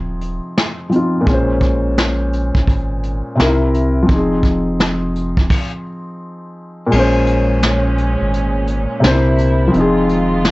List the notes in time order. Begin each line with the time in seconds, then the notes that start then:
Already playing: D#1 F3 C4 D#4 G#4
0.21 closed hi-hat
0.58 snare, closed hi-hat
0.89 F3 C4, closed hi-hat
0.94 D#4 F4
1.21 A#2
1.25 A#1 G#3, kick, closed hi-hat
1.29 C#4
1.33 C5
1.61 kick, closed hi-hat
1.97 snare, closed hi-hat
2.33 closed hi-hat
2.55 G#1, kick
2.67 kick, closed hi-hat
3.03 closed hi-hat
3.35 C3 C4
3.39 C2 D#4 A#4, snare, closed hi-hat
3.46 E4
3.74 closed hi-hat
4.03 F3
4.07 F1 C4, kick, closed hi-hat
4.11 D#4
4.15 G#4
4.43 kick, closed hi-hat
4.80 snare, closed hi-hat
5.16 closed hi-hat
5.37 D#1, kick
5.50 kick, crash
6.86 A#2 G#3
6.91 A#1 A#2 G#3 C#4, crash
6.99 C5
7.27 closed hi-hat
7.62 snare, closed hi-hat
7.98 closed hi-hat
8.21 G#1
8.34 closed hi-hat
8.67 closed hi-hat
9.00 C2 C3 A#3 E4, snare, closed hi-hat
9.04 D4 C5
9.11 E4
9.38 closed hi-hat
9.68 F3
9.72 F1 D#3 G#3 C4 F4, closed hi-hat
9.76 D#4
9.80 G#4
10.09 closed hi-hat
10.44 snare, closed hi-hat